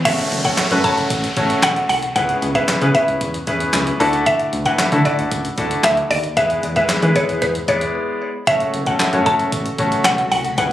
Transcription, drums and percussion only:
0.05 kick, closed hi-hat, crash
0.18 closed hi-hat
0.32 closed hi-hat
0.44 kick, closed hi-hat
0.57 snare, clap, closed hi-hat
0.71 closed hi-hat
0.84 kick, closed hi-hat
0.98 closed hi-hat
1.10 kick, closed hi-hat
1.24 closed hi-hat
1.37 kick, closed hi-hat
1.50 closed hi-hat
1.62 snare, clap, closed hi-hat
1.76 closed hi-hat
1.90 open hi-hat
2.03 closed hi-hat
2.16 kick, closed hi-hat
2.29 closed hi-hat
2.42 closed hi-hat
2.55 kick, closed hi-hat
2.68 snare, clap, closed hi-hat
2.81 closed hi-hat
2.95 kick, closed hi-hat
3.08 closed hi-hat
3.21 kick, closed hi-hat
3.34 closed hi-hat
3.47 kick, closed hi-hat
3.60 closed hi-hat
3.73 snare, clap, closed hi-hat
3.87 closed hi-hat
4.00 open hi-hat
4.13 closed hi-hat
4.26 kick, closed hi-hat
4.40 closed hi-hat
4.53 closed hi-hat
4.66 kick, closed hi-hat
4.78 snare, clap, closed hi-hat
4.92 closed hi-hat
5.05 kick, closed hi-hat
5.19 closed hi-hat
5.32 kick, closed hi-hat
5.45 closed hi-hat
5.58 kick, closed hi-hat
5.71 closed hi-hat
5.83 snare, clap, closed hi-hat
5.97 closed hi-hat
6.11 open hi-hat
6.24 closed hi-hat
6.37 kick, closed hi-hat
6.50 closed hi-hat
6.63 closed hi-hat
6.76 kick, closed hi-hat
6.89 snare, clap, closed hi-hat
7.02 closed hi-hat
7.16 kick, closed hi-hat
7.29 closed hi-hat
7.42 kick, closed hi-hat
7.55 closed hi-hat
7.68 kick, closed hi-hat
7.81 closed hi-hat
8.47 kick, closed hi-hat
8.60 closed hi-hat
8.74 closed hi-hat
8.86 kick, closed hi-hat
8.99 snare, clap, closed hi-hat
9.13 closed hi-hat
9.26 kick, closed hi-hat
9.39 closed hi-hat
9.52 kick, closed hi-hat
9.66 closed hi-hat
9.78 kick, closed hi-hat
9.92 closed hi-hat
10.04 snare, clap, closed hi-hat
10.18 closed hi-hat
10.32 open hi-hat
10.45 closed hi-hat
10.58 kick, closed hi-hat

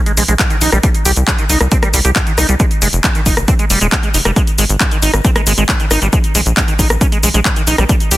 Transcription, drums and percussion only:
0.06 closed hi-hat, shaker
0.17 open hi-hat, shaker
0.28 closed hi-hat, shaker
0.39 kick, clap, closed hi-hat, shaker
0.50 closed hi-hat, shaker
0.61 open hi-hat, shaker
0.72 cross-stick, closed hi-hat, shaker
0.83 kick, closed hi-hat, shaker
0.94 closed hi-hat, shaker
1.05 open hi-hat, shaker
1.16 closed hi-hat, shaker
1.28 kick, clap, closed hi-hat, shaker
1.38 closed hi-hat, shaker
1.50 open hi-hat, shaker
1.61 cross-stick, shaker
1.72 kick, closed hi-hat, shaker
1.83 cross-stick, closed hi-hat, shaker
1.94 open hi-hat, shaker
2.05 closed hi-hat, shaker
2.16 kick, clap, closed hi-hat, shaker
2.27 closed hi-hat, shaker
2.38 cross-stick, open hi-hat, shaker
2.49 closed hi-hat, shaker
2.60 kick, closed hi-hat, shaker
2.71 closed hi-hat, shaker
2.82 open hi-hat, shaker
2.93 closed hi-hat, shaker
3.04 kick, clap, closed hi-hat, shaker
3.15 closed hi-hat, shaker
3.26 kick, open hi-hat, shaker
3.37 cross-stick, shaker
3.48 kick, closed hi-hat, shaker
3.59 closed hi-hat, shaker
3.70 open hi-hat, shaker
3.81 closed hi-hat, shaker
3.92 kick, clap, closed hi-hat, shaker
4.03 closed hi-hat, shaker
4.14 open hi-hat, shaker
4.25 cross-stick, closed hi-hat, shaker
4.36 kick, closed hi-hat, shaker
4.47 closed hi-hat, shaker
4.58 open hi-hat, shaker
4.69 closed hi-hat, shaker
4.80 kick, clap, closed hi-hat, shaker
4.91 closed hi-hat, shaker
5.02 open hi-hat, shaker
5.14 cross-stick, closed hi-hat, shaker
5.25 kick, closed hi-hat, shaker
5.36 cross-stick, closed hi-hat, shaker
5.47 open hi-hat, shaker
5.58 closed hi-hat, shaker
5.69 kick, clap, closed hi-hat, shaker
5.80 closed hi-hat, shaker
5.91 cross-stick, open hi-hat, shaker
6.02 closed hi-hat, shaker
6.13 kick, closed hi-hat, shaker
6.24 closed hi-hat, shaker
6.35 open hi-hat, shaker
6.46 closed hi-hat, shaker
6.57 kick, clap, closed hi-hat, shaker
6.68 closed hi-hat, shaker
6.79 kick, open hi-hat, shaker
6.90 cross-stick, closed hi-hat, shaker
7.01 kick, closed hi-hat, shaker
7.12 closed hi-hat, shaker
7.23 open hi-hat, shaker
7.34 closed hi-hat, shaker
7.45 kick, clap, closed hi-hat, shaker
7.56 closed hi-hat, shaker
7.67 open hi-hat, shaker
7.78 cross-stick, closed hi-hat, shaker
7.89 kick, closed hi-hat, shaker
8.00 closed hi-hat, shaker
8.11 open hi-hat, shaker

